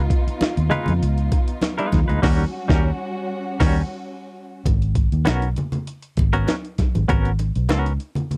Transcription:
Already playing: string section B3 D#4 F4
0.10 kick, closed hi-hat
0.27 muted fingered electric bass stroke, closed hi-hat
0.41 muted fingered electric bass stroke, snare, closed hi-hat, high conga
0.57 fingered electric bass D#2, closed hi-hat
0.70 clean electric guitar G#3 D#4 F4 B4, closed hi-hat, low conga
0.86 fingered electric bass F2, closed hi-hat, low conga
1.02 fingered electric bass C#2, closed hi-hat
1.18 closed hi-hat
1.32 kick, closed hi-hat, muted conga
1.48 closed hi-hat
1.61 snare, closed hi-hat, high conga
1.78 clean electric guitar G#3 D#4 F4 B4, closed hi-hat
1.92 fingered electric bass D#2, kick, snare, closed hi-hat, high conga
2.08 fingered electric bass D2, clean electric guitar G#3 D#4 F4 B4, closed hi-hat
2.22 fingered electric bass D#2, clean electric guitar G3 C#4 F#4 A#4, string section G3 C#4 F#4, kick, snare, crash
2.68 fingered electric bass D#2, clean electric guitar G3 C#4 F#4 A#4, kick, snare
3.60 fingered electric bass D#2, clean electric guitar G3 C#4 F#4 A#4, kick, snare, crash
4.66 fingered electric bass G#1, kick, closed hi-hat, muted conga
4.82 closed hi-hat
4.95 kick, closed hi-hat
5.12 fingered electric bass D#2, closed hi-hat
5.25 fingered electric bass B1, clean electric guitar B3 C#4 F#4 A#4, snare, closed hi-hat, high conga
5.42 closed hi-hat
5.56 closed hi-hat, low conga
5.72 closed hi-hat, low conga
5.87 closed hi-hat
6.02 closed hi-hat
6.17 fingered electric bass G#1, kick, closed hi-hat, muted conga
6.33 clean electric guitar B3 C#4 F#4 A#4, closed hi-hat
6.48 snare, closed hi-hat, high conga
6.65 closed hi-hat
6.78 muted fingered electric bass stroke, kick, snare, closed hi-hat, high conga
6.95 fingered electric bass G#1, closed hi-hat, high conga
7.08 fingered electric bass G#1, clean electric guitar B3 C#4 F#4 A#4, kick, closed hi-hat, muted conga
7.25 closed hi-hat
7.39 closed hi-hat, muted conga
7.55 fingered electric bass B1, closed hi-hat
7.69 fingered electric bass C#2, clean electric guitar B3 C#4 F#4 A#4, snare, closed hi-hat, high conga
7.86 closed hi-hat
8.00 closed hi-hat
8.15 closed hi-hat, low conga
8.31 closed hi-hat, low conga

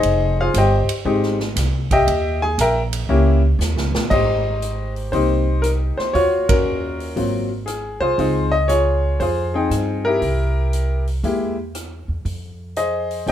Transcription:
Already playing: grand piano D#4 G#4 C5 D#5
0.03 upright bass F1, kick, ride
0.41 grand piano F4 G#4 C5 F5
0.54 upright bass G1, grand piano G4 C5 G5, kick, hi-hat pedal, ride
0.58 grand piano D#5
0.88 muted upright bass stroke, ride
1.05 upright bass G#1, grand piano G#3 C4 D#4 G4, kick
1.23 snare
1.40 snare
1.56 upright bass C2, kick, snare, hi-hat pedal, ride
1.91 grand piano G4 D#5 E5 G5, kick, ride
2.07 upright bass D#2, kick, ride
2.42 grand piano G#4 G#5
2.58 upright bass A#1, grand piano A#4 E5 G5 A#5, kick, hi-hat pedal, ride
2.93 ride
3.09 upright bass C#2, grand piano A#3 C#4 E4 G4, kick
3.59 upright bass D#2, snare, hi-hat pedal
3.76 upright bass C#2, snare
3.92 upright bass A#1, snare
4.10 upright bass G#1, grand piano G4 C5 D#5, kick, crash
4.62 closed hi-hat
4.96 open hi-hat
5.12 upright bass C2, grand piano A#3 C4 D#4 G4 C5, kick, open hi-hat
5.62 grand piano A#4, cross-stick, closed hi-hat
5.97 grand piano C5, muted upright bass stroke, snare
6.13 upright bass D#2, grand piano F4 F#4 C#5, kick, open hi-hat
6.49 grand piano C#4 F#4 A#4, kick, ride
7.00 open hi-hat
7.16 upright bass G#1, grand piano F#3 A#3 C4 F4, kick, open hi-hat
7.66 grand piano G#4, cross-stick, closed hi-hat
8.00 upright bass C2, grand piano F4 G#4 C5
8.18 upright bass C#2, grand piano G#3 C4 D#4 F4, kick, open hi-hat
8.52 grand piano D#5
8.68 grand piano F4 G#4 C#5, closed hi-hat
9.20 upright bass F2, grand piano F4 G#4 C5, kick, open hi-hat
9.54 grand piano C4 D#4 G#4 G5
9.70 upright bass G2, cross-stick, closed hi-hat
10.05 grand piano E4 G4 A#4
10.22 upright bass C2, kick, open hi-hat
10.73 closed hi-hat
11.07 open hi-hat
11.23 upright bass E2, grand piano G#3 A#3 E4 G4, kick, open hi-hat
11.75 cross-stick, closed hi-hat
12.08 upright bass E2
12.25 upright bass F2, kick, open hi-hat
12.76 grand piano G#4 C5 D#5, closed hi-hat
13.11 open hi-hat
13.26 upright bass C2, grand piano G#3 C4 D#4 G4 G5, kick, open hi-hat

